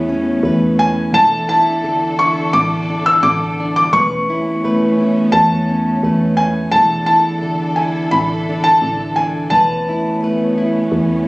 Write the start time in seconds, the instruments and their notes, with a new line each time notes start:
Already playing: fm bass E2, steel-string acoustic guitar E2 A3 E4 B4, string section A3 B3 C#4
0.09 steel-string acoustic guitar C#4
0.43 fm bass E2, steel-string acoustic guitar A3 B4
0.79 steel-string acoustic guitar C#4, felt piano G#5
1.13 fm bass E1, steel-string acoustic guitar E2 A4, string section E3 D4 A4, felt piano A5
1.49 steel-string acoustic guitar E4, felt piano A5
1.83 steel-string acoustic guitar D3 A4
2.19 steel-string acoustic guitar E4, felt piano C#6
2.53 fm bass A1, steel-string acoustic guitar E2, felt piano D6
2.90 steel-string acoustic guitar D4
3.06 felt piano E6
3.23 fm bass A1, steel-string acoustic guitar D3 A4, felt piano D6
3.60 steel-string acoustic guitar D4
3.76 felt piano D6
3.93 fm bass E1, steel-string acoustic guitar E2 B4, string section A3 B3 C#4, felt piano C#6
4.30 steel-string acoustic guitar E4
4.64 steel-string acoustic guitar A3 B4
5.00 steel-string acoustic guitar E4
5.32 fm bass E2, steel-string acoustic guitar E2, felt piano A5
5.69 steel-string acoustic guitar C#4
6.03 fm bass E2, steel-string acoustic guitar A3 B4
6.37 steel-string acoustic guitar C#4, felt piano G#5
6.72 fm bass E1, steel-string acoustic guitar E2 A4, string section E3 D4 A4, felt piano A5
7.06 steel-string acoustic guitar E4, felt piano A5
7.42 steel-string acoustic guitar D3 A4
7.76 steel-string acoustic guitar E4, felt piano G#5
8.11 fm bass A1, steel-string acoustic guitar E2, felt piano B5
8.49 steel-string acoustic guitar D4
8.64 felt piano A5
8.82 fm bass A1, steel-string acoustic guitar D3 A4
9.16 steel-string acoustic guitar D4, felt piano G#5
9.50 fm bass E1, steel-string acoustic guitar E2 B4, string section A3 B3 C#4, felt piano A5
9.89 steel-string acoustic guitar E4
10.23 steel-string acoustic guitar A3 B4
10.58 steel-string acoustic guitar E4
10.92 fm bass E2, steel-string acoustic guitar E2